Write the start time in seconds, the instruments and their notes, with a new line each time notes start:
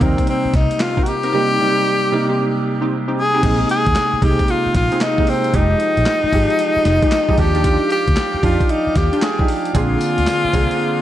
Already playing: grand piano G3 A#3 D#4
0.00 fingered electric bass D#2, grand piano C3 G3 A#3 D#4, analog polysynth C4 D#4 A#4, tenor saxophone C4, kick, closed hi-hat
0.18 kick, closed hi-hat
0.27 tenor saxophone C4, closed hi-hat
0.45 muted fingered electric bass stroke
0.54 fingered electric bass C2, tenor saxophone D#4, kick, snare, closed hi-hat
0.71 closed hi-hat
0.80 tenor saxophone F4, snare, clap, closed hi-hat
0.97 analog polysynth C4 D#4 A#4, kick
1.03 tenor saxophone F#4, closed hi-hat
1.08 tenor saxophone G4
1.23 analog polysynth C4 D#4 A#4, closed hi-hat
1.32 grand piano C3 G3 A#3 D#4, analog polysynth C4 D#4 G4
1.59 grand piano C3 G3 A#3 D#4
2.12 grand piano C3 G3 A#3 D#4
2.29 analog polysynth C4 D#4 G4
2.81 analog polysynth C4 D#4 G4
3.08 analog polysynth C4 D#4 G4
3.19 tenor saxophone G#4
3.34 analog polysynth C4 D#4 G4
3.43 fingered electric bass A#1, grand piano C3 G#3 A#3 D#4, analog polysynth C4 D#4 G#4, kick, closed hi-hat, crash
3.69 tenor saxophone G#4, closed hi-hat
3.86 fingered electric bass D#2, kick, closed hi-hat
3.95 snare, clap, closed hi-hat
4.13 muted fingered electric bass stroke
4.22 fingered electric bass C2, grand piano C3 G#3 A#3 D#4, analog polysynth C4 D#4 G#4, tenor saxophone G4, kick, open hi-hat
4.39 kick, closed hi-hat
4.48 tenor saxophone F4, closed hi-hat
4.66 muted fingered electric bass stroke
4.74 fingered electric bass A#1, tenor saxophone F4, kick, snare, closed hi-hat
4.92 analog polysynth C4 D#4 G#4, closed hi-hat
5.01 tenor saxophone D#4, snare, clap, closed hi-hat
5.18 grand piano C3 G#3 A#3 D#4, kick
5.27 tenor saxophone C4, open hi-hat
5.44 closed hi-hat
5.53 fingered electric bass F1, grand piano F3 G#3 D#4 G4, analog polysynth G#3 D#4 G4, tenor saxophone D#4, kick, closed hi-hat
5.80 closed hi-hat
5.97 fingered electric bass A#1, closed hi-hat
6.06 snare, clap, closed hi-hat
6.24 muted fingered electric bass stroke
6.32 fingered electric bass G#1, grand piano F3 G#3 D#4 G4, analog polysynth G#3 D#4 G4, kick, open hi-hat
6.50 closed hi-hat
6.59 closed hi-hat
6.76 muted fingered electric bass stroke
6.85 fingered electric bass F1, snare, closed hi-hat
7.02 analog polysynth G#3 D#4 G4, kick, closed hi-hat
7.12 snare, clap, closed hi-hat
7.29 grand piano F3 G#3 D#4 G4, analog polysynth G#3 D#4 G4, kick
7.38 fingered electric bass D#2, grand piano F3 D4 D#4 G4, tenor saxophone G4, kick, open hi-hat
7.55 analog polysynth D4 F4 G4, closed hi-hat
7.64 analog polysynth D4 F4 G4, pipe organ G4 F5 D6, kick, closed hi-hat
7.90 tenor saxophone G4, closed hi-hat
8.08 fingered electric bass D2, kick, closed hi-hat
8.16 snare, clap, closed hi-hat
8.34 muted fingered electric bass stroke
8.43 fingered electric bass F2, grand piano F3 D4 D#4 G4, analog polysynth D4 F4 G4, tenor saxophone F4, kick, open hi-hat
8.60 kick, closed hi-hat
8.69 tenor saxophone D#4, closed hi-hat
8.87 muted fingered electric bass stroke
8.95 fingered electric bass D#2, tenor saxophone G4, kick, snare, closed hi-hat
9.13 analog polysynth D4 F4 G4, closed hi-hat
9.22 tenor saxophone G#4, snare, clap, closed hi-hat
9.39 grand piano F3 D4 D#4 G4, kick
9.48 open hi-hat
9.65 closed hi-hat
9.74 fingered electric bass A#1, grand piano D3 A#3 C4 G#4, analog polysynth C4 D4 G#4, tenor saxophone F4, pipe organ G#4 D5 C6, kick, closed hi-hat, tambourine
10.01 closed hi-hat, tambourine
10.18 fingered electric bass D2, closed hi-hat
10.27 snare, clap, closed hi-hat, tambourine
10.45 muted fingered electric bass stroke
10.53 fingered electric bass C2, grand piano D3 A#3 C4 G#4, analog polysynth C4 D4 G#4, kick, open hi-hat, tambourine
10.71 closed hi-hat